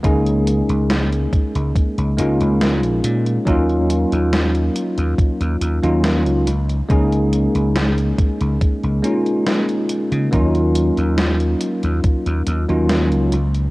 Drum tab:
HH |xxxxxxxxxxxxxxxx|xxxxxxxxxxxxxxxx|xxxxxxxxxxxxxxxx|xxxxxxxxxxxxxxxx|
SD |----o-------o---|----o-------o---|----o-------o---|----o-------o---|
BD |o-----o-o-------|o-------o-------|o-----o-o-------|o-------o-------|